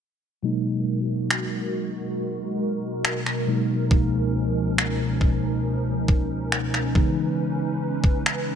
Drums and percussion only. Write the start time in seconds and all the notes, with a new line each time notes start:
1.31 finger snap
3.05 finger snap
3.26 finger snap
3.91 kick
4.78 finger snap
5.21 kick
6.08 kick
6.52 finger snap
6.74 finger snap
6.95 kick
8.04 kick
8.26 finger snap